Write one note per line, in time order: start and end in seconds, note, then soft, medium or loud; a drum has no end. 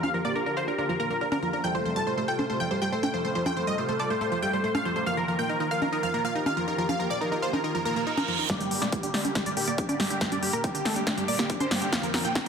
0.00 0.06 F3 loud
0.00 1.55 G4 loud
0.00 0.13 F5 medium
0.00 0.13 F6 medium
0.00 high conga medium
0.14 0.29 D3 medium
0.14 0.19 F3 medium
0.14 0.29 F3 medium
0.14 0.29 A#3 medium
0.14 0.29 F4 medium
0.14 0.24 A#4 medium
0.14 0.24 A#5 medium
0.25 0.29 A#3 loud
0.25 0.34 D5 medium
0.25 0.34 D6 medium
0.35 0.51 D3 medium
0.35 0.50 F3 medium
0.35 0.51 A#3 medium
0.35 0.38 D4 medium
0.35 0.51 F4 medium
0.35 0.45 A#4 medium
0.35 0.45 A#5 medium
0.46 0.49 D4 medium
0.46 0.56 A#4 medium
0.46 0.56 A#5 medium
0.57 0.72 D3 medium
0.57 0.72 F3 medium
0.57 0.72 A#3 medium
0.57 0.72 F4 medium
0.57 0.67 C5 medium
0.57 0.61 F5 loud
0.57 0.66 C6 medium
0.67 0.72 D4 loud
0.67 0.77 A#4 medium
0.67 0.77 A#5 medium
0.78 0.93 D3 medium
0.78 0.93 F3 medium
0.78 0.93 A#3 medium
0.78 0.83 D4 loud
0.78 0.93 F4 medium
0.78 0.88 A#4 medium
0.78 0.88 A#5 medium
0.89 0.92 F3 loud
0.89 0.99 A#4 medium
0.89 0.99 A#5 medium
1.00 1.15 D3 medium
1.00 1.15 F3 medium
1.00 1.07 A#3 medium
1.00 1.15 A#3 medium
1.00 1.15 F4 medium
1.00 1.09 A#4 medium
1.00 1.09 A#5 loud
1.10 1.15 A#3 medium
1.10 1.20 A#4 medium
1.10 1.20 A#5 medium
1.21 1.28 D4 medium
1.21 1.31 A#4 medium
1.21 1.31 A#5 medium
1.32 1.39 D3 medium
1.32 1.39 F3 medium
1.32 1.39 A#3 medium
1.32 1.35 D4 loud
1.32 1.39 F4 medium
1.32 1.41 A#4 medium
1.32 1.41 A#5 medium
1.32 high conga medium
1.42 1.50 D3 medium
1.42 1.49 F3 medium
1.42 1.50 F3 medium
1.42 1.50 A#3 medium
1.42 1.50 F4 medium
1.42 1.52 A#4 medium
1.42 1.52 A#5 medium
1.53 1.61 D3 medium
1.53 1.61 F3 medium
1.53 1.61 A#3 medium
1.53 1.60 D4 medium
1.53 1.61 F4 medium
1.53 1.63 A#4 medium
1.53 1.63 A#5 medium
1.64 1.79 C3 medium
1.64 1.69 F3 loud
1.64 1.79 G3 medium
1.64 1.79 A3 medium
1.64 1.79 F4 medium
1.64 2.20 A4 loud
1.64 1.74 G5 medium
1.64 1.73 G6 medium
1.75 1.77 F3 medium
1.75 1.84 C5 medium
1.75 1.84 C6 medium
1.85 2.01 C3 medium
1.85 1.90 F3 medium
1.85 2.01 G3 medium
1.85 2.01 A3 medium
1.85 2.01 F4 medium
1.85 1.95 C5 medium
1.85 1.95 C6 medium
1.96 2.01 G3 loud
1.96 2.06 A5 medium
1.96 2.06 A6 medium
2.07 2.22 C3 medium
2.07 2.22 G3 medium
2.07 2.10 A3 medium
2.07 2.22 A3 medium
2.07 2.22 F4 medium
2.07 2.16 C5 medium
2.07 2.16 C6 medium
2.17 2.20 A3 medium
2.17 2.27 C5 medium
2.17 2.27 C6 medium
2.28 2.43 C3 medium
2.28 2.43 G3 medium
2.28 2.43 A3 medium
2.28 2.43 F4 medium
2.28 2.33 A4 loud
2.28 2.84 A4 medium
2.28 2.38 G5 medium
2.28 2.38 G6 medium
2.39 2.44 A3 medium
2.39 2.48 C5 medium
2.39 2.48 C6 medium
2.39 high conga medium
2.50 2.65 C3 medium
2.50 2.65 G3 medium
2.50 2.54 A3 loud
2.50 2.65 A3 medium
2.50 2.65 F4 medium
2.50 2.59 C5 medium
2.50 2.59 C6 medium
2.60 2.63 F3 loud
2.60 2.70 G5 medium
2.60 2.70 G6 medium
2.71 2.86 C3 medium
2.71 2.78 G3 loud
2.71 2.86 G3 medium
2.71 2.86 A3 medium
2.71 2.86 F4 medium
2.71 2.81 C5 medium
2.71 2.80 C6 medium
2.82 2.86 G3 loud
2.82 2.91 G5 medium
2.82 2.91 G6 medium
2.92 2.99 A3 medium
2.92 4.98 A4 loud
2.92 3.02 C5 medium
2.92 3.02 C6 medium
3.03 3.11 C3 medium
3.03 3.11 G3 medium
3.03 3.06 A3 loud
3.03 3.11 A3 medium
3.03 3.11 F4 medium
3.03 3.13 G5 medium
3.03 3.13 G6 medium
3.03 high conga medium
3.14 3.22 C3 medium
3.14 3.21 F3 medium
3.14 3.22 G3 medium
3.14 3.22 A3 medium
3.14 3.22 F4 medium
3.14 3.23 C5 medium
3.14 3.24 C6 medium
3.25 3.32 C3 medium
3.25 3.32 G3 medium
3.25 3.32 A3 medium
3.25 3.32 F4 medium
3.25 3.34 C5 medium
3.25 3.34 C6 medium
3.35 3.51 C3 medium
3.35 3.40 F3 loud
3.35 3.51 G3 medium
3.35 3.51 A3 medium
3.35 3.51 F4 medium
3.35 3.45 C5 medium
3.35 3.45 C6 medium
3.46 3.49 F3 loud
3.46 3.56 G5 medium
3.46 3.56 G6 medium
3.46 high conga medium
3.57 3.72 C3 medium
3.57 3.61 F3 medium
3.57 3.72 G3 medium
3.57 3.72 A3 medium
3.57 3.72 F4 medium
3.57 3.66 C5 medium
3.57 3.66 C6 medium
3.67 3.72 G3 medium
3.67 3.77 D#5 medium
3.67 3.77 D#6 medium
3.78 3.93 C3 medium
3.78 3.93 G3 medium
3.78 3.93 A3 medium
3.78 3.81 A3 medium
3.78 3.93 F4 medium
3.78 3.87 C5 medium
3.78 3.88 C6 medium
3.89 3.92 A3 medium
3.89 3.98 C5 medium
3.89 3.99 C6 medium
3.99 4.15 C3 medium
3.99 4.15 G3 medium
3.99 4.15 A3 medium
3.99 4.15 F4 medium
3.99 4.04 A4 loud
3.99 4.09 D5 medium
3.99 4.09 D6 medium
4.10 4.15 A3 medium
4.10 4.20 C5 medium
4.10 4.20 C6 medium
4.21 4.36 C3 medium
4.21 4.36 G3 medium
4.21 4.26 A3 loud
4.21 4.36 A3 medium
4.21 4.36 F4 medium
4.21 4.31 C5 medium
4.21 4.31 C6 medium
4.32 4.34 F3 medium
4.32 4.41 C5 medium
4.32 4.41 C6 medium
4.42 4.57 C3 medium
4.42 4.57 G3 medium
4.42 4.49 G3 medium
4.42 4.57 A3 medium
4.42 4.57 F4 medium
4.42 4.52 G5 medium
4.42 4.52 G6 medium
4.53 4.58 G3 loud
4.53 4.63 C5 medium
4.53 4.63 C6 medium
4.64 4.71 A3 loud
4.64 4.74 C5 medium
4.64 4.74 C6 medium
4.75 4.82 C3 medium
4.75 4.82 G3 medium
4.75 4.77 A3 loud
4.75 4.82 A3 medium
4.75 4.82 F4 medium
4.75 4.84 F5 medium
4.75 4.84 F6 medium
4.75 high conga medium
4.85 4.93 C3 medium
4.85 4.92 F3 loud
4.85 4.93 G3 medium
4.85 4.93 A3 medium
4.85 4.93 F4 medium
4.85 4.95 C5 medium
4.85 4.95 C6 medium
4.96 5.04 C3 medium
4.96 5.04 G3 medium
4.96 5.03 A3 medium
4.96 5.04 A3 medium
4.96 5.04 F4 medium
4.96 5.06 C5 medium
4.96 5.06 C6 medium
5.06 5.22 D#3 medium
5.06 5.11 F3 loud
5.06 5.22 F3 medium
5.06 5.22 A#3 medium
5.06 5.22 F4 medium
5.06 5.63 A#4 medium
5.06 5.16 F5 medium
5.06 5.16 F6 loud
5.17 5.20 F3 loud
5.17 5.27 A#4 medium
5.17 5.27 A#5 medium
5.28 5.43 D#3 medium
5.28 5.33 F3 medium
5.28 5.43 F3 medium
5.28 5.43 A#3 medium
5.28 5.43 F4 medium
5.28 5.38 A#4 medium
5.28 5.38 A#5 medium
5.39 5.43 A#3 loud
5.39 5.48 G5 medium
5.39 5.49 G6 medium
5.49 5.65 D#3 medium
5.49 5.65 F3 medium
5.49 5.65 A#3 medium
5.49 5.52 D#4 medium
5.49 5.65 F4 medium
5.49 5.59 A#4 medium
5.49 5.59 A#5 medium
5.60 5.63 D#4 loud
5.60 5.70 A#4 medium
5.60 5.70 A#5 medium
5.71 5.86 D#3 medium
5.71 5.86 F3 medium
5.71 5.86 A#3 medium
5.71 5.86 F4 medium
5.71 6.27 A#4 loud
5.71 5.76 F5 loud
5.71 5.81 F5 medium
5.71 5.81 F6 medium
5.82 5.86 D#4 medium
5.82 5.91 A#4 medium
5.82 5.92 A#5 medium
5.82 high conga medium
5.92 6.08 D#3 medium
5.92 6.08 F3 medium
5.92 6.08 A#3 medium
5.92 5.97 D#4 loud
5.92 6.08 F4 medium
5.92 6.02 A#4 medium
5.92 6.02 A#5 medium
6.03 6.06 F3 medium
6.03 6.13 F5 medium
6.03 6.13 F6 medium
6.14 6.29 D#3 medium
6.14 6.29 F3 medium
6.14 6.21 A#3 medium
6.14 6.29 A#3 medium
6.14 6.29 F4 medium
6.14 6.24 A#4 medium
6.14 6.24 A#5 medium
6.25 6.29 A#3 loud
6.25 6.34 F5 medium
6.25 6.34 F6 medium
6.35 6.42 D#4 loud
6.35 8.41 G4 loud
6.35 6.45 A#4 medium
6.35 6.45 A#5 medium
6.46 6.54 D#3 medium
6.46 6.54 F3 medium
6.46 6.54 A#3 medium
6.46 6.49 D#4 medium
6.46 6.54 F4 medium
6.46 6.56 F5 medium
6.46 6.56 F6 medium
6.46 high conga medium
6.57 6.64 D#3 medium
6.57 6.64 F3 loud
6.57 6.64 F3 medium
6.57 6.65 A#3 medium
6.57 6.65 F4 medium
6.57 6.66 A#4 medium
6.57 6.66 A#5 medium
6.68 6.75 D#3 medium
6.68 6.75 F3 medium
6.68 6.75 A#3 medium
6.68 6.74 D#4 medium
6.68 6.75 F4 medium
6.68 6.77 A#4 medium
6.68 6.77 A#5 medium
6.78 6.93 D#3 medium
6.78 6.83 F3 loud
6.78 6.93 F3 medium
6.78 6.93 A#3 medium
6.78 6.93 F4 medium
6.78 6.88 A#4 medium
6.78 6.88 A#5 medium
6.89 6.92 F3 loud
6.89 6.99 F5 medium
6.89 6.99 F6 medium
6.89 high conga medium
6.99 7.15 D#3 medium
6.99 7.04 F3 medium
6.99 7.15 F3 medium
6.99 7.15 A#3 medium
6.99 7.15 F4 medium
6.99 7.09 A#4 medium
6.99 7.09 A#5 medium
7.10 7.15 A#3 medium
7.10 7.20 D5 medium
7.10 7.20 D6 medium
7.21 7.36 D#3 medium
7.21 7.36 F3 medium
7.21 7.36 A#3 medium
7.21 7.24 D#4 medium
7.21 7.36 F4 medium
7.21 7.31 A#4 medium
7.21 7.31 A#5 medium
7.32 7.35 D#4 medium
7.32 7.41 A#4 medium
7.32 7.41 A#5 medium
7.42 7.58 D#3 medium
7.42 7.58 F3 medium
7.42 7.58 A#3 medium
7.42 7.58 F4 medium
7.42 7.52 C5 medium
7.42 7.47 F5 loud
7.42 7.52 C6 medium
7.53 7.58 D#4 medium
7.53 7.63 A#4 medium
7.53 7.63 A#5 medium
7.53 high conga medium
7.64 7.79 D#3 medium
7.64 7.79 F3 medium
7.64 7.79 A#3 medium
7.64 7.68 D#4 loud
7.64 7.79 F4 medium
7.64 7.74 A#4 medium
7.64 7.74 A#5 medium
7.64 reverse cymbal medium
7.75 7.77 F3 loud
7.75 7.84 A#4 medium
7.75 7.84 A#5 medium
7.85 8.00 D#3 medium
7.85 8.00 F3 medium
7.85 7.92 A#3 loud
7.85 8.00 A#3 medium
7.85 8.00 F4 medium
7.85 7.95 A#4 loud
7.85 7.95 A#5 medium
7.96 8.01 A#3 medium
7.96 8.06 A#4 medium
7.96 8.06 A#5 medium
8.07 8.14 D#4 loud
8.07 8.16 A#4 medium
8.07 8.17 A#5 medium
8.17 8.25 D#3 medium
8.17 8.25 F3 medium
8.17 8.25 A#3 medium
8.17 8.20 D#4 medium
8.17 8.25 F4 medium
8.17 8.27 A#4 medium
8.17 8.27 A#5 medium
8.17 high conga medium
8.28 8.36 D#3 medium
8.28 8.35 F3 medium
8.28 8.36 F3 medium
8.28 8.36 A#3 medium
8.28 8.36 F4 medium
8.28 8.38 A#4 medium
8.28 8.38 A#5 medium
8.39 8.46 D#3 medium
8.39 8.46 F3 medium
8.39 8.46 A#3 medium
8.39 8.46 D#4 medium
8.39 8.46 F4 medium
8.39 8.49 A#4 medium
8.39 8.49 A#5 medium
8.49 8.65 D3 medium
8.49 8.54 G3 loud
8.49 8.65 G3 medium
8.49 8.65 A#3 medium
8.49 8.65 G4 medium
8.49 8.59 D5 loud
8.49 8.59 D6 loud
8.49 kick loud
8.49 snare soft
8.49 closed hi-hat medium
8.49 riser medium
8.60 8.63 G3 loud
8.60 8.70 G4 medium
8.60 8.70 G5 medium
8.60 closed hi-hat medium
8.71 8.86 D3 medium
8.71 8.76 G3 medium
8.71 8.86 G3 medium
8.71 8.86 A#3 medium
8.71 8.86 G4 medium
8.71 8.81 G4 medium
8.71 8.81 G5 medium
8.71 open hi-hat loud
8.82 8.86 A#3 loud
8.82 8.91 D5 medium
8.82 8.91 D6 medium
8.82 snare soft
8.82 closed hi-hat medium
8.92 9.07 D3 medium
8.92 9.07 G3 medium
8.92 9.07 A#3 medium
8.92 8.95 D4 medium
8.92 9.02 G4 medium
8.92 9.07 G4 medium
8.92 9.02 G5 medium
8.92 kick loud
8.92 closed hi-hat medium
9.03 9.06 D4 loud
9.03 9.13 G4 medium
9.03 9.13 G5 medium
9.03 closed hi-hat medium
9.14 9.29 D3 medium
9.14 9.29 G3 medium
9.14 9.29 A#3 medium
9.14 9.29 G4 medium
9.14 9.23 D5 medium
9.14 9.19 G5 loud
9.14 9.24 D6 medium
9.14 snare soft
9.14 open hi-hat medium
9.25 9.29 D4 medium
9.25 9.34 G4 medium
9.25 9.34 G5 medium
9.25 closed hi-hat medium
9.25 high conga medium
9.35 9.50 D3 medium
9.35 9.50 G3 medium
9.35 9.50 A#3 medium
9.35 9.40 D4 loud
9.35 9.50 G4 medium
9.35 9.45 G4 medium
9.35 9.45 G5 medium
9.35 kick loud
9.35 snare soft
9.35 closed hi-hat medium
9.46 9.49 G3 loud
9.46 9.56 D5 medium
9.46 9.56 D6 medium
9.46 closed hi-hat medium
9.57 9.72 D3 medium
9.57 9.72 G3 medium
9.57 9.72 A#3 medium
9.57 9.64 A#3 medium
9.57 9.72 G4 medium
9.57 9.66 G4 medium
9.57 9.66 G5 medium
9.57 open hi-hat loud
9.67 9.72 A#3 loud
9.67 9.77 D5 medium
9.67 9.77 D6 medium
9.67 closed hi-hat medium
9.78 9.85 D4 medium
9.78 9.88 G4 medium
9.78 9.88 G5 medium
9.78 kick loud
9.78 closed hi-hat medium
9.89 9.96 D3 medium
9.89 9.96 G3 medium
9.89 9.96 A#3 medium
9.89 9.92 D4 loud
9.89 9.96 G4 medium
9.89 9.98 D5 medium
9.89 9.99 D6 medium
9.89 closed hi-hat medium
9.89 high conga medium
9.99 10.07 D3 medium
9.99 10.07 G3 medium
9.99 10.07 G3 loud
9.99 10.07 A#3 medium
9.99 10.07 G4 medium
9.99 10.09 G4 medium
9.99 10.09 G5 medium
9.99 snare medium
9.99 open hi-hat medium
10.10 10.18 D3 medium
10.10 10.18 G3 medium
10.10 10.18 A#3 medium
10.10 10.17 D4 medium
10.10 10.18 G4 medium
10.10 10.20 G4 medium
10.10 10.20 G5 medium
10.10 closed hi-hat medium
10.21 10.36 D3 medium
10.21 10.36 G3 medium
10.21 10.26 G3 loud
10.21 10.36 G4 medium
10.21 10.31 G4 medium
10.21 kick loud
10.21 snare medium
10.21 closed hi-hat medium
10.32 10.35 G3 loud
10.32 10.41 D5 medium
10.32 10.41 D6 medium
10.32 closed hi-hat medium
10.32 high conga medium
10.42 10.57 D3 medium
10.42 10.57 G3 medium
10.42 10.47 G3 medium
10.42 10.57 A#3 medium
10.42 10.57 G4 medium
10.42 10.52 G4 medium
10.42 10.52 G5 medium
10.42 open hi-hat loud
10.53 10.58 A#3 loud
10.53 10.63 A#4 medium
10.53 10.63 A#5 medium
10.53 closed hi-hat medium
10.64 10.79 D3 medium
10.64 10.79 G3 medium
10.64 10.79 A#3 medium
10.64 10.67 D4 medium
10.64 10.74 G4 medium
10.64 10.79 G4 medium
10.64 10.73 G5 medium
10.64 kick loud
10.64 closed hi-hat medium
10.75 10.77 D4 medium
10.75 10.84 G4 medium
10.75 10.84 G5 medium
10.75 closed hi-hat medium
10.85 11.00 D3 medium
10.85 11.01 G3 medium
10.85 11.01 A#3 medium
10.85 11.00 G4 medium
10.85 10.95 A4 medium
10.85 10.90 G5 loud
10.85 10.95 A5 medium
10.85 snare medium
10.85 open hi-hat medium
10.96 11.01 D4 loud
10.96 11.06 G4 medium
10.96 11.05 G5 medium
10.96 closed hi-hat medium
11.07 11.22 A#3 medium
11.07 11.11 D4 loud
11.07 11.17 G4 medium
11.07 11.16 G5 medium
11.07 kick loud
11.07 snare medium
11.07 closed hi-hat medium
11.17 11.20 G3 loud
11.17 11.27 G4 medium
11.17 11.27 G5 medium
11.17 closed hi-hat medium
11.28 11.43 D3 medium
11.28 11.43 G3 medium
11.28 11.35 A#3 loud
11.28 11.43 A#3 medium
11.28 11.43 G4 medium
11.28 11.38 D5 medium
11.28 11.38 D6 medium
11.28 open hi-hat loud
11.39 11.43 A#3 loud
11.39 11.49 G4 medium
11.39 11.49 G5 medium
11.39 snare medium
11.39 closed hi-hat medium
11.50 11.57 D4 loud
11.50 11.59 G4 medium
11.50 11.59 G5 medium
11.50 kick loud
11.50 closed hi-hat medium
11.60 11.68 D3 medium
11.60 11.68 G3 medium
11.60 11.68 A#3 medium
11.60 11.63 D4 loud
11.60 11.68 G4 medium
11.60 11.70 C5 loud
11.60 11.70 C6 medium
11.60 closed hi-hat medium
11.60 high conga medium
11.71 11.79 D3 medium
11.71 11.78 G3 loud
11.71 11.79 G3 loud
11.71 11.79 A#3 medium
11.71 11.79 G4 loud
11.71 11.81 G4 medium
11.71 11.81 G5 medium
11.71 snare medium
11.71 open hi-hat medium
11.82 11.89 D3 medium
11.82 11.90 G3 medium
11.82 11.89 A#3 medium
11.82 11.89 D4 medium
11.82 11.91 G4 medium
11.82 11.89 G4 medium
11.82 11.91 G5 medium
11.82 closed hi-hat medium
11.92 12.08 D3 medium
11.92 11.97 F3 loud
11.92 12.08 F3 medium
11.92 12.08 A#3 medium
11.92 12.08 F4 medium
11.92 12.02 F5 medium
11.92 12.02 F6 loud
11.92 kick loud
11.92 snare medium
11.92 closed hi-hat medium
12.03 12.06 F3 loud
12.03 12.13 A#4 medium
12.03 12.13 A#5 medium
12.03 closed hi-hat medium
12.14 12.29 D3 medium
12.14 12.18 F3 medium
12.14 12.29 F3 medium
12.14 12.29 A#3 medium
12.14 12.29 F4 medium
12.14 12.24 A#4 medium
12.14 12.24 A#5 medium
12.14 snare medium
12.14 open hi-hat loud
12.24 12.29 A#3 loud
12.24 12.34 G5 medium
12.24 12.34 G6 medium
12.24 closed hi-hat medium
12.35 12.48 D3 medium
12.35 12.48 F3 medium
12.35 12.48 A#3 medium
12.35 12.38 D4 medium
12.35 12.48 F4 medium
12.35 12.45 A#4 medium
12.35 12.45 A#5 medium
12.35 kick loud
12.35 snare medium
12.35 closed hi-hat medium